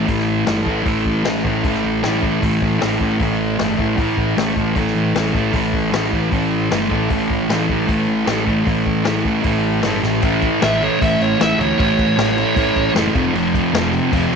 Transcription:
Already playing: distorted electric guitar A3
0.06 picked electric bass A1, distorted electric guitar A2 E3, kick, open hi-hat
0.10 distorted electric guitar A3
0.19 snare
0.45 picked electric bass G1, distorted electric guitar A2 E3, snare, open hi-hat
0.50 distorted electric guitar A3
0.64 picked electric bass A1, distorted electric guitar A3, kick
0.69 distorted electric guitar E3
0.83 picked electric bass A1, distorted electric guitar A2 E3, kick, open hi-hat
0.88 distorted electric guitar A3
1.05 picked electric bass A1, kick
1.23 picked electric bass A1, distorted electric guitar A2 E3, snare, open hi-hat
1.27 distorted electric guitar A3
1.44 picked electric bass A1, distorted electric guitar A3, kick
1.48 distorted electric guitar E3
1.63 picked electric bass A1, distorted electric guitar A2 E3, kick, open hi-hat
1.68 distorted electric guitar A3
1.75 snare
1.84 picked electric bass A1
2.03 picked electric bass A1, distorted electric guitar A2 E3, snare, open hi-hat
2.08 distorted electric guitar A3
2.22 distorted electric guitar A3, kick
2.26 distorted electric guitar E3
2.41 picked electric bass A1, distorted electric guitar A2 E3, kick, open hi-hat
2.46 distorted electric guitar A3
2.62 picked electric bass A1, kick
2.79 picked electric bass A1, distorted electric guitar A2 E3, snare, open hi-hat
2.83 distorted electric guitar A3
2.99 picked electric bass A1, distorted electric guitar A3, kick
3.03 distorted electric guitar E3
3.18 picked electric bass A1, distorted electric guitar A2 E3, kick, open hi-hat
3.23 distorted electric guitar A3
3.59 picked electric bass G1, distorted electric guitar A2 E3, snare, open hi-hat
3.63 distorted electric guitar A3
3.77 picked electric bass A1, distorted electric guitar A3, kick
3.81 distorted electric guitar E3
3.96 picked electric bass A1, distorted electric guitar A2 E3, kick, open hi-hat
4.01 distorted electric guitar A3
4.17 picked electric bass A1, kick
4.36 picked electric bass A1, distorted electric guitar A2 E3, snare, open hi-hat
4.41 distorted electric guitar A3
4.56 picked electric bass A1, distorted electric guitar A3, kick
4.61 distorted electric guitar E3
4.75 picked electric bass A1, distorted electric guitar A2 E3, kick, open hi-hat
4.80 distorted electric guitar A3
4.87 snare
4.95 picked electric bass A1
5.14 picked electric bass A1, distorted electric guitar A2 E3, snare, open hi-hat
5.18 distorted electric guitar A3
5.33 distorted electric guitar A3, kick
5.38 distorted electric guitar E3
5.52 picked electric bass A1, distorted electric guitar A2 E3, kick, open hi-hat
5.56 distorted electric guitar A3
5.73 picked electric bass A1, kick
5.91 picked electric bass A1, distorted electric guitar A2 E3, snare, open hi-hat
5.96 distorted electric guitar A3
6.11 picked electric bass A1, distorted electric guitar A3, kick
6.15 distorted electric guitar E3
6.31 picked electric bass A1, distorted electric guitar A2 E3, kick, open hi-hat
6.35 distorted electric guitar A3
6.70 picked electric bass G1, distorted electric guitar A2 E3, snare, open hi-hat
6.74 distorted electric guitar A3
6.89 picked electric bass A1, distorted electric guitar A3, kick
6.94 distorted electric guitar E3
7.09 picked electric bass A1, distorted electric guitar A2 E3, kick, open hi-hat
7.14 distorted electric guitar A3
7.30 picked electric bass A1, kick
7.49 picked electric bass A1, distorted electric guitar A2 E3, snare, open hi-hat
7.53 distorted electric guitar A3
7.68 picked electric bass A1, distorted electric guitar A3, kick
7.73 distorted electric guitar E3
7.87 picked electric bass A1, distorted electric guitar A2 E3, kick, open hi-hat
7.92 distorted electric guitar A3
8.08 picked electric bass A1
8.26 picked electric bass A1, distorted electric guitar A2 E3, snare, open hi-hat
8.30 distorted electric guitar A3
8.45 distorted electric guitar A3, kick
8.50 distorted electric guitar E3
8.64 picked electric bass A1, distorted electric guitar A2 E3, kick, open hi-hat
8.69 distorted electric guitar A3
8.86 picked electric bass A1, kick
9.04 picked electric bass A1, distorted electric guitar A2 E3, snare, open hi-hat
9.09 distorted electric guitar A3
9.23 picked electric bass A1, distorted electric guitar A3, kick
9.28 distorted electric guitar E3
9.43 picked electric bass A1, distorted electric guitar A2 E3, kick, open hi-hat
9.47 distorted electric guitar A3
9.82 picked electric bass G1, distorted electric guitar A2 E3, snare, open hi-hat
9.87 distorted electric guitar A3
10.02 picked electric bass A1, distorted electric guitar A3, snare
10.07 distorted electric guitar E3
10.22 picked electric bass A1, distorted electric guitar A2 E3 A3, kick, crash
10.42 kick, crash
10.61 picked electric bass A1, distorted electric guitar A2 E3 A3, lead electric guitar E5, snare, crash
10.73 snare
10.82 distorted electric guitar A2 E3 A3, lead electric guitar C#5, crash
11.00 picked electric bass A1, distorted electric guitar A2 E3 A3, lead electric guitar E5, kick, crash
11.21 picked electric bass A1, lead electric guitar C#5, crash
11.38 picked electric bass A1, distorted electric guitar A2 E3 A3, lead electric guitar E5, snare, crash
11.59 picked electric bass D2, distorted electric guitar A2 E3 A3, lead electric guitar C#5, crash
11.78 picked electric bass A1, distorted electric guitar A2 E3 A3, lead electric guitar C#5, kick, crash
11.99 kick, crash
12.17 picked electric bass A1, distorted electric guitar A2 E3 A3, snare, crash
12.29 snare
12.37 distorted electric guitar A2 E3 A3, crash
12.55 picked electric bass A1, distorted electric guitar A2 E3 A3, kick, crash
12.76 picked electric bass A1, kick, crash
12.94 picked electric bass F#1, distorted electric guitar A2 E3 A3, snare, crash
13.14 picked electric bass F1, distorted electric guitar F2 C3 F3, kick, crash
13.33 picked electric bass F1, distorted electric guitar F2 C3 F3, crash
13.54 kick, crash
13.73 picked electric bass F1, distorted electric guitar F2 C3 F3, snare, crash
13.84 snare
13.92 distorted electric guitar F2 C3 F3, crash
14.12 picked electric bass F1, distorted electric guitar F2 C3 F3, kick, crash
14.32 picked electric bass F1

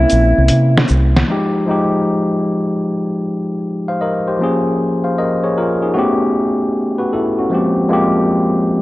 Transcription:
Already playing: tine electric piano A#3 C4 C#4 E4, clean electric guitar E4
0.10 fingered electric bass A#1, closed hi-hat, shaker
0.38 fingered electric bass C2
0.48 fingered electric bass C3, closed hi-hat
0.77 snare
0.88 fingered electric bass C2, shaker
1.16 snare
1.27 tine electric piano F3 G#3 D#4
1.31 tine electric piano G4
1.66 tine electric piano F3 G#3 D#4
1.71 tine electric piano G4
3.88 tine electric piano C5 F5
4.01 tine electric piano A#4 D#5
4.28 tine electric piano G4 C5
4.39 tine electric piano F3 A#3 C#4
4.43 tine electric piano G#4
5.04 tine electric piano C5 F5
5.18 tine electric piano A#4 D#5
5.44 tine electric piano G#4 C#5
5.58 tine electric piano F4 A#4
5.82 tine electric piano D#4 G#4
5.94 tine electric piano A3 B3 C#4 F#4
5.99 tine electric piano G4
6.98 tine electric piano F#4 B4
7.13 tine electric piano E4 A4
7.39 tine electric piano C#4 F#4
7.50 tine electric piano F3 G#3 A#3 C4
7.54 tine electric piano G4
7.89 tine electric piano F3 G#3 A#3 C4
7.93 tine electric piano G4

